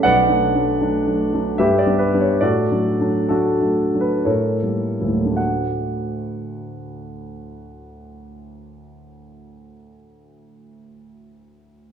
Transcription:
grand piano
0.03 B1 B4 D5 F#5
0.28 F#3 A3 D4
0.54 F#3 A3 D4
0.81 F#3 A3 D4
1.06 F#3 A3 D4
1.33 F#3 A3 D4
1.58 G2 G4 B4 E5
1.79 D5
1.86 G3 B3 D4
1.99 B4
2.14 G3 B3 D4
2.20 C#5
2.41 A2 F#4 A4 D5
2.71 F#3 A3 D4
3.00 F#3 A3 D4
3.29 F#3 A3 D4 F#4 A4
3.61 F#3 A3 D4
3.93 F#3 A3 D4
4.01 B4
4.25 A2 A4 A#4 C#5
4.63 G3 A#3 E4
5.00 D2 G3 A#3 E4
5.08 A2
5.14 F#3
5.19 A3
5.26 D4
5.31 F#4
5.37 F#5

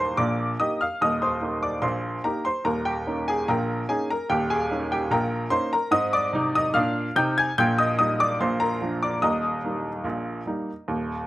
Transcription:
grand piano
Already playing: D#1 D#2 A#3 D#4 G4 A#4 A#5
0.00 C5 C6
0.17 A#1 A#2 D5 D6
0.59 A#3 D#4 G4 D#5 D#6
0.81 F5 F6
1.01 D#1 D#2 D#5 D#6
1.22 C5 C6
1.41 A#3 D#4 G4
1.63 D5 D6
1.82 A#1 A#2 C5 C6
2.24 A#3 D#4 G4 A#4 A#5
2.45 C5 C6
2.65 D#1 D#2 A#4 A#5
2.85 G4 G5
3.07 A#3 C#4 D#4
3.28 G#4 G#5
3.48 A#1 A#2 A#4 G5 A#5
3.89 A#3 C#4 D#4 G#4 G#5
4.10 A#4 A#5
4.29 D#1 D#2 G4 G5
4.50 G#4 G#5
4.71 A#3 C#4 D#4
4.92 G4 G5
5.11 A#1 A#2 A#4 G5 A#5
5.50 A#3 C#4 D#4 C5 C6
5.73 A#4 A#5
5.91 G#2 C4 D#5 D#6
6.13 D5 D6
6.33 C3 D#4
6.55 D#5 D#6
6.74 A#2 D4 F5 F6
7.16 C3 D#4 G5 G6
7.38 G#5 G#6
7.58 A#1 A#2 G5 G6
7.78 D#5 D#6
7.99 G3 A#3 D#4 D#5 D#6
8.20 D5 D6
8.40 A#1 A#2 C5 C6
8.60 A#4 A#5
8.82 F3 A#3 D4
9.03 D5 D6
9.22 D#1 D#2 D#5 A#5 D#6
9.64 G3 A#3 D#4
10.04 A#1 A#2
10.46 G3 A#3 D#4
10.88 D#1 D#2

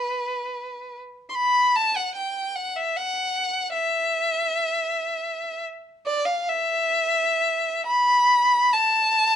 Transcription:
violin
Already playing: B4
1.29 C6
1.34 B5
1.76 A5
1.96 F#5
2.15 G5
2.55 F#5
2.76 E5
2.96 F#5
3.73 E5
6.06 D5
6.26 F5
6.49 E5
7.86 B5
8.73 A5

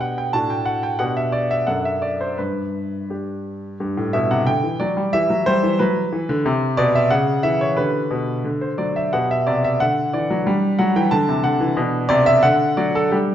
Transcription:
grand piano
Already playing: B2 D4 G4 G5
0.01 F#5
0.18 G5
0.33 A2 D4 F#4 A5
0.50 G5
0.65 F#5
0.83 G5
0.99 B2 D4 G4 F#5
1.17 E5
1.32 D5
1.51 E5
1.67 F#2 D4 A4 F#5
1.85 E5
2.02 D5
2.21 C5
2.38 G2 B4
3.10 D4 G4
3.80 G2 G4
3.97 A2
4.13 B2 E5
4.31 C3 F#5
4.47 D3 G5
4.64 E3
4.80 F#3 D5
4.97 G3
5.13 E3 G4 E5
5.30 F#3
5.46 G3 C5
5.63 E3
5.79 F#3 B4
6.12 E3
6.29 D3
6.45 C3 G4
6.77 B2 D5
6.95 E5
7.10 C#3 F#5
7.43 E3 E5
7.61 C#5
7.77 D3 G4 B4
8.11 B2
8.44 D3
8.61 C5
8.78 F#3 D5
8.96 E5
9.13 B2 G4 F#5
9.31 E5
9.47 C3 D5
9.64 E5
9.80 D3 F#5
10.13 E3 D5
10.31 F#3
10.46 G3 D4
10.79 F#3 F#5
10.96 E3 G5
11.11 D3 A5
11.29 C3
11.44 D3 F#5
11.61 E3
11.77 B2 D4
12.09 C3 D5
12.26 E5
12.43 D3 F#5
12.77 F#3 D5
12.95 A4
13.12 G3 D4 G4

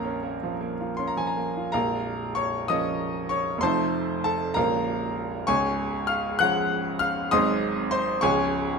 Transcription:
grand piano
Already playing: A#1 A#3 C#4 A#4 F5 A#5
0.05 C#4
0.23 A#3
0.43 F3
0.60 A#3
0.80 F4
0.97 C#4 C6
1.07 A#5
1.17 F3 G#5
1.27 A#5
1.37 A#3
1.57 F4
1.72 A#0 A#1 A#4 F5 A#5
2.35 C#5 C#6
2.68 F3 A#3 C#4 D#5 D#6
3.29 C#5 C#6
3.58 F1 C6
3.63 F2 F3 A3 D#4 C5 A5
4.24 A4 A5
4.54 A#0 A#1 F3 A#3 C#4 A#4 F5 A#5
5.47 C#1 C#2 C#5 G#5 C#6
6.07 F5 F6
6.39 F3 G#3 C#4 F#5 F#6
6.99 F5 F6
7.31 G#1 G#2 F#3 G#3 C4 D#5 C6 D#6
7.91 C5 C6
8.21 C#1 C#2 F3 G#3 C#4 C#5 G#5 C#6

